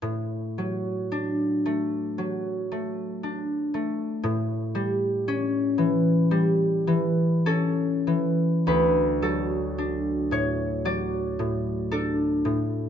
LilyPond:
<<
  \new Staff \with { instrumentName = "Harp" } { \time 4/4 \key d \major \tempo 4 = 56 r1 | r2. a'4 | b'8 a'4 cis''8 d''4 a'4 | }
  \new Staff \with { instrumentName = "Harp" } { \clef bass \time 4/4 \key d \major a,8 fis8 d'8 a8 fis8 a8 d'8 a8 | a,8 g8 cis'8 e8 g8 e8 cis'8 e8 | d,8 fis8 d'8 a,8 fis8 a,8 d'8 a,8 | }
>>